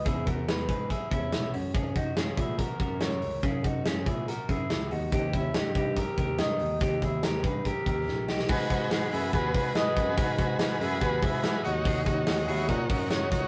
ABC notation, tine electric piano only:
X:1
M:4/4
L:1/16
Q:1/4=142
K:G#m
V:1 name="Tine electric piano" clef=bass
E,,6 G,,3 z E,,2 B,,,2 F,,2- | F,,6 A,,3 z F,,2 F,,2 C,,2 | F,,6 A,,3 z F,,2 C,,2 D,,2 | D,,4 =G,,2 G,,3 z D,,2 G,,2 D,,2 |
D,,6 =G,,3 z D,,2 A,,,2 B,,,2 | G,,2 G,,4 F,,2 D,,2 G,,4 F,,2 | G,,2 G,,4 F,,2 D,,2 G,,4 D,,2- | D,,2 D,,4 D,,2 A,,2 F,,4 C,,2 |]